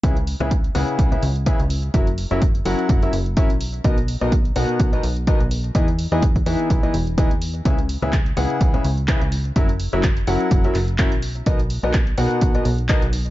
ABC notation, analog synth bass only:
X:1
M:4/4
L:1/16
Q:"Swing 16ths" 1/4=126
K:C#dor
V:1 name="Analog synth bass" clef=bass
C,,3 C,,3 C,, z C,,2 C,,3 C,,3 | F,,,3 F,,,3 F,,, z F,,,2 F,,,3 B,,,3 | B,,,3 B,,,3 B,,, z B,,,2 B,,,3 B,,,3 | E,,3 E,,3 E,, z B,,,2 E,,,3 E,,3 |
C,,3 C,,3 C,, z C,,2 C,,3 C,,3 | F,,,3 F,,,3 F,,, z F,,,2 F,,,3 B,,,3 | B,,,3 B,,,3 B,,, z B,,,2 B,,,3 B,,,3 |]